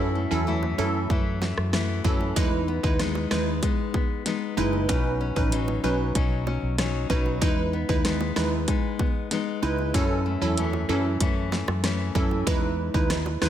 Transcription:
Already playing: fretless electric bass F#2, nylon-string guitar F#2 E4
0.15 nylon-string guitar A3
0.31 fretless electric bass E2, synth pluck F#3 C#4 E4 A4
0.47 nylon-string guitar E3 A3 E4
0.63 high bongo
0.78 fretless electric bass F#2, nylon-string guitar E3, synth pluck F#3 C#4 E4 A4, high bongo, low bongo
1.10 fretless electric bass F#2, nylon-string guitar E3 A3 E4, kick, high bongo
1.42 nylon-string guitar A3, snare, high bongo
1.57 fretless electric bass F#2, cross-stick
1.73 nylon-string guitar E3 A3 E4, cross-stick, snare
2.04 fretless electric bass F#2, nylon-string guitar E3, synth pluck F#3 C#4 E4 A4, kick, low bongo
2.21 high bongo
2.36 fretless electric bass E2, synth pluck G#3 D#4 E4 B4, nylon-string guitar D#4, kick, closed hi-hat, high bongo
2.68 nylon-string guitar B3
2.83 fretless electric bass D#2, synth pluck G#3 D#4 E4 B4, kick
2.99 nylon-string guitar G#3 B3 D#4, cross-stick, snare, closed hi-hat
3.15 high bongo
3.31 fretless electric bass D#2, synth pluck G#3 D#4 E4 B4, nylon-string guitar G#3, cross-stick, snare, high bongo, low bongo
3.63 nylon-string guitar G#3 B3 D#4, kick, closed hi-hat, high bongo
3.94 nylon-string guitar B3, kick, high bongo
4.26 nylon-string guitar G#3 B3 D#4, snare, closed hi-hat
4.57 fretless electric bass F#1, synth pluck G#3 D#4 E4 B4, nylon-string guitar G#3, low bongo
4.73 high bongo
4.89 nylon-string guitar B2 D#4, synth pluck F#3 C#4 D#4 B4, kick, closed hi-hat, high bongo
5.21 nylon-string guitar C#4
5.36 fretless electric bass A1, synth pluck F#3 C#4 D#4 B4, kick
5.52 nylon-string guitar F#3 C#4 D#4, closed hi-hat
5.68 high bongo
5.83 fretless electric bass B1, synth pluck F#3 C#4 D#4 B4, nylon-string guitar F#3, high bongo, low bongo
6.15 fretless electric bass B1, nylon-string guitar F#3 C#4 D#4, kick, closed hi-hat, high bongo
6.47 nylon-string guitar C#4, high bongo
6.63 fretless electric bass B1
6.78 nylon-string guitar F#3 C#4 D#4, cross-stick, snare, closed hi-hat
7.10 fretless electric bass B1, synth pluck F#3 C#4 D#4 B4, nylon-string guitar F#3, kick, low bongo
7.26 high bongo
7.41 fretless electric bass E2, synth pluck G#3 D#4 E4 B4, nylon-string guitar D#4, kick, closed hi-hat, high bongo
7.73 nylon-string guitar B3
7.89 fretless electric bass D#2, synth pluck G#3 D#4 E4 B4, kick
8.05 nylon-string guitar G#3 B3 D#4, cross-stick, snare, closed hi-hat
8.21 high bongo
8.36 fretless electric bass D#2, synth pluck G#3 D#4 E4 B4, nylon-string guitar G#3, cross-stick, snare, high bongo, low bongo
8.68 nylon-string guitar G#3 B3 D#4, kick, closed hi-hat, high bongo
8.99 nylon-string guitar B3, kick, high bongo
9.31 nylon-string guitar G#3 B3 D#4, snare, closed hi-hat
9.62 fretless electric bass C#2, synth pluck G#3 D#4 E4 B4, nylon-string guitar G#3, low bongo
9.78 high bongo
9.94 nylon-string guitar F#2 C#4, fretless electric bass F#2, synth pluck F#3 C#4 E4 A4, kick, closed hi-hat, high bongo
10.26 nylon-string guitar A3
10.41 fretless electric bass E2, synth pluck F#3 C#4 E4 A4
10.57 nylon-string guitar E3 A3 C#4, closed hi-hat
10.73 high bongo
10.89 fretless electric bass F#2, nylon-string guitar E3, synth pluck F#3 C#4 E4 A4, high bongo, low bongo
11.20 fretless electric bass F#2, nylon-string guitar E3 A3 C#4, kick, closed hi-hat, high bongo
11.52 nylon-string guitar A3, snare, high bongo
11.68 fretless electric bass F#2, cross-stick, high bongo
11.84 nylon-string guitar E3 A3 C#4, cross-stick, snare, closed hi-hat
12.15 fretless electric bass F#2, nylon-string guitar E3, synth pluck F#3 C#4 E4 A4, kick, low bongo
12.31 high bongo
12.47 fretless electric bass E2, synth pluck G#3 D#4 E4 B4, kick, closed hi-hat, high bongo
12.94 fretless electric bass D#2, synth pluck G#3 D#4 E4 B4, kick
13.10 cross-stick, snare, closed hi-hat
13.26 high bongo
13.41 fretless electric bass D#2, synth pluck G#3 D#4 E4 B4, cross-stick, snare, high bongo, low bongo

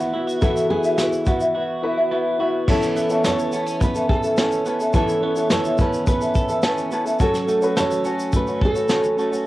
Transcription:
Already playing: clean electric guitar E3 B3 E4 F#4, upright piano B3 E4 F#4 E5, ukulele E4 F#4 B4 E5, nylon-string guitar F#4
0.00 shaker
0.13 upright piano B3 E4 F#4 E5, clean electric guitar E4, ukulele E4 F#4 B4 E5
0.27 clean electric guitar F#4, shaker
0.41 clean electric guitar E3, upright piano B3 E4 F#4 E5, ukulele E4 F#4 B4 E5, nylon-string guitar A4, kick, shaker
0.57 shaker
0.70 clean electric guitar B3, ukulele E4 F#4 B4 E5, nylon-string guitar G#4
0.84 ukulele E4 F#4 E5, shaker
0.98 clean electric guitar E4, ukulele E4 F#4 B4 E5, snare, shaker
1.13 shaker
1.26 clean electric guitar B3, ukulele E4 F#4 B4 E5, nylon-string guitar F#4, kick, shaker
1.40 ukulele E4 F#4 E5, shaker
1.55 ukulele E4 F#4 B4 E5, clean electric guitar F#4
1.82 upright piano B3 E4 F#4 B4, clean electric guitar E4, ukulele E4 F#4 B4
1.86 ukulele E5
1.97 ukulele E4 F#4 E5
2.11 clean electric guitar B3, ukulele E4 F#4 B4 E5
2.38 upright piano B3 E4 F#4 E5, ukulele E4 F#4 B4 E5, clean electric guitar F#4
2.67 clean electric guitar E3, upright piano B3 C#4 E4 A4 C#5, ukulele C#4 E4 A4 B4, nylon-string guitar A4, kick, crash
2.82 snare, shaker
2.95 upright piano B3 C#4 E4 A4 E5, clean electric guitar B3, shaker
3.09 upright piano B3 C#4 E4 A4 C#5, ukulele C#4 E4 A4, shaker
3.24 ukulele C#4 E4 A4 B4, clean electric guitar A4, nylon-string guitar C#5, snare, shaker
3.39 shaker
3.52 clean electric guitar B3, ukulele C#4 E4 A4 B4, shaker
3.67 clean electric guitar C#4, shaker
3.81 clean electric guitar B3, nylon-string guitar B4, kick, shaker
3.95 ukulele C#4 E4 A4, shaker
4.09 clean electric guitar A4, nylon-string guitar A4, kick
4.23 ukulele C#4 E4 A4, shaker
4.37 clean electric guitar C#4, ukulele C#4 E4 A4 B4, snare, shaker
4.52 shaker
4.66 clean electric guitar B3, ukulele C#4 E4 A4 B4, shaker
4.80 ukulele C#4 E4 A4, shaker
4.93 clean electric guitar E3, upright piano B3 C#4 E4 A4 C#5, ukulele C#4 E4 A4 B4, nylon-string guitar A4, kick, shaker
5.09 shaker
5.21 upright piano B3 C#4 E4 A4 C#5, clean electric guitar B3
5.35 upright piano B3 C#4 E4 A4 C#5, ukulele C#4 E4 A4, shaker
5.50 ukulele C#4 E4 A4 B4, clean electric guitar A4, nylon-string guitar C#5, snare, shaker
5.65 ukulele C#4 E4 A4, shaker
5.78 clean electric guitar C#4, ukulele C#4 E4 A4 B4, nylon-string guitar B4, kick, shaker
5.93 shaker
6.07 clean electric guitar B3, nylon-string guitar B4, kick, shaker
6.21 ukulele C#4 E4 A4, shaker
6.35 clean electric guitar A4, kick, shaker
6.49 ukulele C#4 E4 A4, shaker
6.62 ukulele C#4 E4 A4 B4, clean electric guitar C#4, snare, shaker
6.77 shaker
6.91 clean electric guitar B3, ukulele C#4 E4 A4 B4, shaker
7.05 ukulele C#4 E4 A4, shaker
7.19 clean electric guitar F#3, upright piano C#4 F#4 A4, ukulele C#4 F#4 A4 C#5, kick, shaker
7.23 nylon-string guitar A4
7.34 snare, shaker
7.47 clean electric guitar A3, upright piano C#4 F#4 A4, shaker
7.62 upright piano C#4 F#4 B4, ukulele C#4 F#4 C#5, shaker
7.77 ukulele C#4 F#4 A4 C#5, clean electric guitar A4, nylon-string guitar C#5, snare, shaker
7.91 shaker
8.05 clean electric guitar C#4, ukulele C#4 F#4 A4 C#5, shaker
8.19 shaker
8.33 clean electric guitar A3, nylon-string guitar B4, kick, shaker
8.47 ukulele C#4 F#4 C#5, shaker
8.62 clean electric guitar A4, nylon-string guitar A4, kick
8.75 ukulele C#4 F#4 C#5, shaker
8.89 ukulele C#4 F#4 A4 C#5, clean electric guitar C#4, snare, shaker
9.04 shaker
9.17 clean electric guitar A3, ukulele C#4 F#4 A4 C#5, shaker
9.32 ukulele C#4 F#4 C#5, shaker

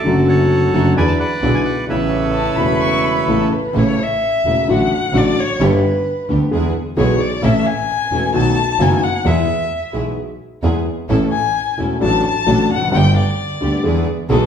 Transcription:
Already playing: bandoneon A4 D5
0.04 double bass F#1, grand piano F#2 D3 F#3 A3 C#4 F#4, string section C#4 F#4
0.28 bandoneon A4 C#5 F#5
0.73 double bass F#1, grand piano F#2 D3 F#3 A3 C#4 F#4, string section C#4 D4 F#4
0.96 grand piano E2 D3 E3 G#3 B3 E4, double bass E2, string section D4 E4 G#4, bandoneon B4 D5 G#5
1.07 bandoneon A5
1.20 bandoneon B4 D5 F#5
1.42 double bass B1, grand piano B1 B2 D3 G#3 B3 E4, string section D4 E4 G#4
1.55 bandoneon G#5
1.65 bandoneon F#5
1.87 double bass A1, grand piano A1 A2 C#3 A3 B3, string section B3 C#4 A4, bandoneon B4 C#5 E5
1.91 grand piano E4
2.34 violin A5
2.56 double bass E1, grand piano E1 E2 C#3 A3 B3 E4, string section B3 C#4 A4, violin B5
2.81 violin C#6
3.04 violin B5
3.27 double bass A1, grand piano A1 A2 C#3 A3 B3 E4, string section B3 C#4 A4, violin A4
3.53 violin B4
3.74 grand piano A1 A2 C#3 E3 A3 E4, double bass A1, string section A3 C#4 E4, violin C#5
4.03 violin E5
4.44 double bass E1, grand piano E1 E2 C#3 E3 A3 E4, string section A3 C#4 E4
4.68 double bass A1, grand piano A1 A2 D3 F#3 A3 F#4, string section A3 D4 F#4
4.72 violin F#5
5.13 double bass A1, grand piano A1 A2 D3 F#3 A3 F#4, string section A3 D4 F#4
5.17 violin D5
5.40 violin C#5
5.60 double bass G1, grand piano G1 G2 D3 G3 B3 G4, string section B3 D4 G4
5.64 violin B4
6.29 grand piano D2 D3 G3 B3 G4, double bass D2, string section B3 D4 G4
6.50 grand piano E2 E3 G#3 B3 G#4, double bass E2, string section B3 E4 G#4
6.97 grand piano B1 B2 E3 G#3 B3 G#4, double bass B1, string section B3 E4 G#4, violin C#5
7.20 violin D5
7.42 grand piano A1 A2 E3 A3 C#4 A4, double bass A1, string section C#4 E4 A4, violin E5
7.67 violin G#5
8.11 double bass E1, grand piano E1 E2 E3 A3 C#4 A4, string section C#4 E4 A4
8.33 grand piano B1 B2 D#3 A3 B3 F#4, double bass B1, string section B3 D#4 A4, violin A5
8.79 grand piano F#1 F#2 D#3 A3 B3 F#4, double bass F#1, string section B3 D#4 A4, violin G#5
9.03 violin F#5
9.25 double bass E2, grand piano E2 E3 G#3 B3 G#4, string section B3 E4 G#4, violin E5
9.93 grand piano B1 B2 E3 G#3 B3 G#4, double bass B1, string section B3 E4 G#4
10.62 double bass E2, grand piano E2 E3 G#3 B3 G#4, string section B3 E4 G#4
11.09 grand piano A1 A2 E3 A3 C#4 A4, double bass A1, string section C#4 E4 A4
11.32 violin G#5
11.78 grand piano E1 E2 E3 A3 C#4 A4, double bass E1, string section C#4 E4 A4
12.00 grand piano A1 A2 F#3 A3 D4 A4, double bass A1, string section D4 F#4 A4, violin A5
12.26 violin A5
12.46 grand piano A1 A2 F#3 A3 D4 A4, double bass A1, string section D4 F#4 A4
12.70 double bass F1, violin F#5
12.75 grand piano E2
12.80 grand piano F2
12.86 grand piano F#2
12.92 grand piano G1 G2 D3 G3 B3 G4, double bass G1, string section B3 D4 G4
12.96 violin G5
13.17 violin D5
13.61 grand piano D2 D3 G3 B3 G4, double bass D2, string section B3 D4 G4
13.83 grand piano E2 E3 G#3 B3 G#4, double bass E2, string section B3 E4 G#4
14.29 grand piano B1 B2 E3 G#3 B3 G#4, double bass B1, string section B3 E4 G#4, violin A4

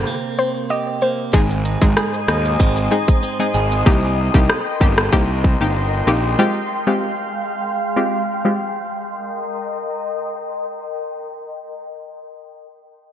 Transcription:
Already playing: clean electric guitar C3 C4 G4
0.07 clean electric guitar A#3
0.38 clean electric guitar C4, synth pluck C5
0.70 clean electric guitar G4, synth pluck D#5
1.02 clean electric guitar A#3, synth pluck C5
1.33 picked electric bass G#1, clean electric guitar G#2 G#4, synth pluck G#3 C4 D#4 G#4, ambient pad C5 D#5 G#5 D#6, kick, shaker
1.50 shaker
1.65 clean electric guitar D#4, closed hi-hat, shaker
1.81 picked electric bass G#1, synth pluck G#3 C4 D#4 G#4, kick, shaker
1.96 clean electric guitar G#4, cross-stick, shaker
2.14 shaker
2.28 picked electric bass D#2, clean electric guitar D#4, cross-stick, closed hi-hat, shaker
2.45 shaker
2.60 picked electric bass G#1, clean electric guitar C4, kick, shaker
2.77 shaker
2.91 synth pluck G#3 C4 D#4 G#4, clean electric guitar D#4, closed hi-hat, shaker
3.08 kick, shaker
3.23 clean electric guitar C4, shaker
3.39 synth pluck G#3 C4 D#4 G#4, shaker
3.54 picked electric bass G#1, clean electric guitar G#4, closed hi-hat, shaker
3.71 shaker
3.86 picked electric bass C2, synth pluck A#3 C4 D#4 G4, ambient pad A#4 G5 C6, kick
4.34 picked electric bass C2, synth pluck A#3 C4 D#4 G4, kick
4.50 cross-stick
4.81 picked electric bass G1, synth pluck A#3 C4 D#4 G4, kick
4.98 cross-stick
5.12 picked electric bass C2, synth pluck A#3 C4 D#4 G4, kick
5.44 kick
5.61 picked electric bass G1, synth pluck A#3 C4 D#4 G4
6.07 picked electric bass A#1, synth pluck A#3 C4 D#4 G4
6.39 synth pluck G#3 C4 F4 G4, ambient pad G#3 F5
6.87 synth pluck G#3 C4 F4 G4
7.96 synth pluck G#3 C4 F4 G4
8.45 synth pluck G#3 C4 F4 G4
8.91 ambient pad A#4 D#5

